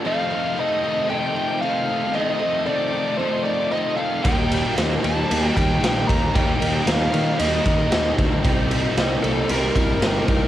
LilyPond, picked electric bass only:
\new Staff \with { instrumentName = "Picked electric bass" } { \clef bass \time 4/4 \key ees \lydian \tempo 4 = 114 r1 | r1 | ees,4 ees,8 ees,8 ees,8 ees,8 bes,,8 ees,8 | ees,8 ees,8 ees,8 ees8 ees,8 ees8 ees,8 d,8 |
c,4 c,8 c,8 c,8 c,8 g,,8 c,8 | }